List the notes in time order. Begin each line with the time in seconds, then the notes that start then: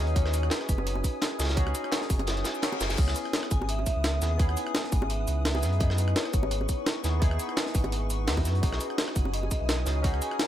Already playing: C#4 D#4 F#4 G#4 B4 D#5 G#5 D#6
0.00 D#2
0.07 closed hi-hat
0.14 C#4 D#4 F#4 C#5, kick, closed hi-hat
0.18 G#4
0.25 cross-stick, snare
0.34 closed hi-hat, cabasa
0.43 cross-stick
0.50 B4, snare, closed hi-hat
0.60 cross-stick, snare
0.69 F#1 B4, kick, closed hi-hat, cabasa
0.78 high bongo
0.87 closed hi-hat
0.95 high bongo
1.04 kick, closed hi-hat, cabasa
1.22 snare, closed hi-hat
1.38 C#2 C#4 D#4 F#4 G#4, snare, closed hi-hat, cabasa
1.44 snare, closed hi-hat
1.49 snare, closed hi-hat
1.55 C#4 D#4 F#4, kick, closed hi-hat
1.59 G#4
1.67 cross-stick, high bongo
1.74 closed hi-hat, cabasa
1.84 cross-stick
1.92 snare, closed hi-hat
2.02 snare
2.10 F#1, kick, closed hi-hat, open hi-hat, cabasa
2.19 closed hi-hat, high bongo
2.27 snare, closed hi-hat, reverse cymbal
2.37 snare, closed hi-hat
2.45 snare, closed hi-hat, cabasa
2.55 cabasa
2.62 C#4 D#4 F#4 G#4, snare, closed hi-hat
2.72 closed hi-hat, high bongo
2.81 F#1, snare, closed hi-hat, cabasa
2.89 snare, closed hi-hat, cabasa
2.97 C#2 B3 C#4 E4 B4 D#6, kick, closed hi-hat, crash
3.01 G#4
3.08 cross-stick, snare
3.14 closed hi-hat, cabasa
3.25 cross-stick
3.33 snare, closed hi-hat
3.43 cross-stick, snare
3.51 G#1 G#5, kick, closed hi-hat, cabasa
3.61 high bongo
3.69 E5, closed hi-hat
3.79 high bongo
3.86 E5, kick, closed hi-hat, cabasa
3.96 C#2
4.04 snare, closed hi-hat
4.21 D#2 B3 D#4 E4 G#4, snare, closed hi-hat, cabasa
4.37 B3 C#4 E4 F#5, kick, closed hi-hat
4.41 G#4
4.49 cross-stick
4.57 G#5, closed hi-hat, cabasa
4.67 cross-stick
4.75 snare, closed hi-hat
4.84 snare
4.92 G#1, kick, closed hi-hat, open hi-hat, cabasa
5.02 high bongo
5.10 E5, closed hi-hat
5.27 C#2, closed hi-hat, cabasa
5.45 E5, snare, closed hi-hat, open hi-hat
5.54 B3 D#4 E4 G#4, high bongo
5.63 F#2, snare, closed hi-hat, cabasa
5.72 closed hi-hat
5.79 B3 D#4 E4 D#5 C#6, kick, closed hi-hat
5.83 G#4
5.90 cross-stick, snare
5.98 closed hi-hat, cabasa
6.08 cross-stick
6.16 C#5, snare, closed hi-hat
6.25 cross-stick, snare
6.33 G#1 C#5, kick, closed hi-hat, cabasa
6.43 high bongo
6.51 closed hi-hat
6.61 high bongo
6.69 kick, closed hi-hat, cabasa
6.86 snare, closed hi-hat
7.03 D#2 B3 D#4 E4 G#4, snare, closed hi-hat, cabasa
7.20 B3 D#4 E4 G#4, kick, closed hi-hat
7.31 cross-stick
7.39 closed hi-hat, cabasa
7.49 cross-stick
7.57 snare, closed hi-hat
7.67 snare
7.75 G#1, kick, closed hi-hat, open hi-hat, cabasa
7.84 closed hi-hat, high bongo
7.92 closed hi-hat
8.10 closed hi-hat, cabasa
8.27 D#2 B3 D#4 E4 F#4, snare, closed hi-hat, open hi-hat
8.37 kick, closed hi-hat, high bongo
8.45 F#2, snare, closed hi-hat, cabasa
8.55 closed hi-hat
8.61 B1 C#4 D#4 F#4 G#4 G#5 D#6, kick, closed hi-hat
8.72 cross-stick, snare
8.80 closed hi-hat, cabasa
8.90 cross-stick
8.98 snare, closed hi-hat
9.07 cross-stick, snare
9.16 F#1 F#5, kick, closed hi-hat, cabasa
9.25 high bongo
9.33 D#5, closed hi-hat
9.43 high bongo
9.51 D#5, kick, closed hi-hat, cabasa
9.59 B1 E5
9.66 D#5, snare, closed hi-hat
9.86 C#2 C#4 D#4 F#4 G#4, snare, closed hi-hat, cabasa
10.02 C#4 D#4 F#4 F#5, kick, closed hi-hat
10.06 G#4
10.14 cross-stick
10.21 G#5, closed hi-hat, cabasa
10.31 cross-stick
10.39 snare, closed hi-hat